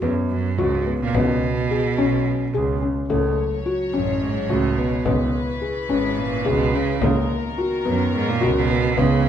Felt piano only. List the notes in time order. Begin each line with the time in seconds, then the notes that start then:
0.03 B3
0.58 F#4
0.87 B3
1.15 B3
1.71 G#4
1.98 C#4
2.54 G#4
2.82 C#4
3.10 A3
3.66 F#4
3.94 C#4
4.50 F#4
4.78 B3
5.06 B3
5.61 G#4
5.90 C#4
6.46 G#4
6.73 C#4
7.01 A#3
7.58 F#4
7.86 B3
8.41 F#4
8.70 B3
8.97 B3